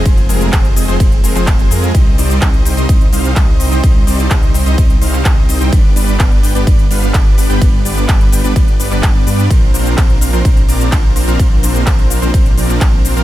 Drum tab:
RD |x---x---x---x---|x---x---x---x---|x---x---x---x---|x---x---x---x---|
HH |xxoxxxoxxxoxxxox|x-oxxxoxxxoxx-ox|x-oxxxoxxxoxx-ox|x-oxxxoxxxoxx-ox|
SH |x-xxx-xxx-xxx-xx|x-xxx-xxx-xxx-xx|x-xxx-xxx-xxx-xx|x-xxx-xxx-xxx-xx|
CP |----x------xx---|----x-------x---|----x------xx---|----x-------x---|
BD |o---o---o---o---|o---o---o---o---|o---o---o---o---|o---o---o---o---|

RD |x---x---x---x---|x---x---x---x---|x---x---x---x---|
HH |x-oxxxoxxxoxx-ox|x-oxxxoxxxoxx-ox|x-oxxxoxxxoxx-ox|
SH |x-xxx-xxx-xxx-xx|x-xxx-xxx-xxx-xx|x-xxx-xxx-xxx-xx|
CP |----x------xx---|----x-------x---|----x------xx---|
BD |o---o---o---o---|o---o---o---o---|o---o---o---o---|